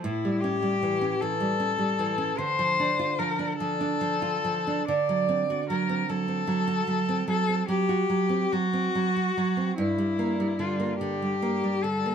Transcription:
0.01 A2 E4
0.25 G3
0.41 C#4 G4
0.62 G3
0.83 E3
1.01 C#4
1.20 E3 A4
1.40 G3
1.60 C#4
1.78 G3
1.99 E3
2.18 C#4
2.38 D3 C5
2.59 F3
2.80 D4
2.99 F4
3.19 F3 A#4
3.39 D4
3.58 F3 A4
3.81 D4
4.01 F3
4.22 F4
4.45 F3
4.67 D4
4.88 D3 D5
5.09 F#3
5.29 C4
5.50 F#4
5.70 F#3 A#4
5.89 C4
6.09 F#3 A4
6.28 C4
6.47 F#3
6.68 F#4
6.88 F#3
7.09 C4
7.28 F#3 A4
7.49 C4
7.68 F#3 G4
7.89 F#4
8.10 F#3
8.29 C4
8.53 F#3 F#4
8.73 C4
8.95 F#3
9.17 F#4
9.37 F#3
9.57 C4
9.77 G2 E4
9.98 G3
10.19 A#3
10.40 G3
10.59 D3 F4
10.80 A#3
10.99 D3 G4
11.22 G3
11.42 A#3
11.64 G3
11.84 D3 A4
12.06 A#3

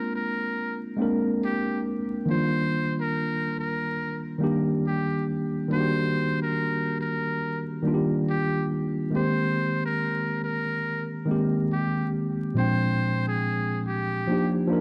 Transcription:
Already playing: G#3 A#3 C4 D4 F4 A#4
0.16 A#4
0.96 G#3 A#3 C4
1.00 D4 A#4
1.45 G4
2.25 D#3 F3 A#3
2.29 G3 D4 F4 C5
3.00 A#4
3.59 A#4
4.38 D#3 G3 A#3
4.43 D4 G4
4.87 G4
5.68 D#3 G3 A#3
5.73 D4 F#4 C5
5.80 G4
6.43 A#4
7.01 A#4
7.82 D#3 G3 A#3 D4
7.88 F4
7.94 G4
8.30 G4
9.10 D#3 G#3 A#3 C4
9.16 G4 C5
9.86 A#4
10.44 A#4
11.26 D#3 G#3 A#3 C4
11.31 G4
11.73 G4
12.54 A#2 F3 G#3 C4 C5
12.58 D4 G5
13.28 G#4
13.87 G4
14.27 F3 A#3 D4 D#4
14.32 G4
14.68 F3 A#3 D4 D#4
14.73 A#4

